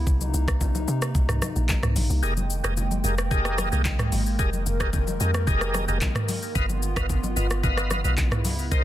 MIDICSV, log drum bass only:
0, 0, Header, 1, 2, 480
1, 0, Start_track
1, 0, Key_signature, -4, "minor"
1, 0, Tempo, 540541
1, 60, Time_signature, 4, 2, 24, 8
1, 7852, End_track
2, 0, Start_track
2, 0, Title_t, "Log drum bass"
2, 0, Program_c, 0, 39
2, 60, Note_on_c, 0, 36, 110
2, 292, Note_off_c, 0, 36, 0
2, 300, Note_on_c, 0, 36, 107
2, 763, Note_off_c, 0, 36, 0
2, 780, Note_on_c, 0, 48, 101
2, 1012, Note_off_c, 0, 48, 0
2, 1021, Note_on_c, 0, 36, 99
2, 1141, Note_off_c, 0, 36, 0
2, 1145, Note_on_c, 0, 36, 92
2, 1256, Note_off_c, 0, 36, 0
2, 1385, Note_on_c, 0, 34, 101
2, 1496, Note_off_c, 0, 34, 0
2, 1625, Note_on_c, 0, 36, 84
2, 1736, Note_off_c, 0, 36, 0
2, 1740, Note_on_c, 0, 34, 83
2, 1860, Note_off_c, 0, 34, 0
2, 1865, Note_on_c, 0, 36, 93
2, 1980, Note_on_c, 0, 29, 98
2, 1993, Note_off_c, 0, 36, 0
2, 2332, Note_off_c, 0, 29, 0
2, 2345, Note_on_c, 0, 29, 89
2, 2688, Note_off_c, 0, 29, 0
2, 2700, Note_on_c, 0, 29, 107
2, 2932, Note_off_c, 0, 29, 0
2, 2941, Note_on_c, 0, 29, 103
2, 3292, Note_off_c, 0, 29, 0
2, 3305, Note_on_c, 0, 36, 96
2, 3648, Note_off_c, 0, 36, 0
2, 3660, Note_on_c, 0, 32, 95
2, 3892, Note_off_c, 0, 32, 0
2, 3901, Note_on_c, 0, 29, 109
2, 4132, Note_off_c, 0, 29, 0
2, 4140, Note_on_c, 0, 29, 98
2, 4603, Note_off_c, 0, 29, 0
2, 4620, Note_on_c, 0, 41, 100
2, 4852, Note_off_c, 0, 41, 0
2, 4860, Note_on_c, 0, 29, 100
2, 5212, Note_off_c, 0, 29, 0
2, 5226, Note_on_c, 0, 29, 90
2, 5337, Note_off_c, 0, 29, 0
2, 5820, Note_on_c, 0, 31, 108
2, 6172, Note_off_c, 0, 31, 0
2, 6184, Note_on_c, 0, 31, 90
2, 6527, Note_off_c, 0, 31, 0
2, 6540, Note_on_c, 0, 31, 105
2, 6772, Note_off_c, 0, 31, 0
2, 6781, Note_on_c, 0, 31, 99
2, 7132, Note_off_c, 0, 31, 0
2, 7145, Note_on_c, 0, 35, 97
2, 7500, Note_on_c, 0, 37, 99
2, 7513, Note_off_c, 0, 35, 0
2, 7732, Note_off_c, 0, 37, 0
2, 7741, Note_on_c, 0, 36, 104
2, 7852, Note_off_c, 0, 36, 0
2, 7852, End_track
0, 0, End_of_file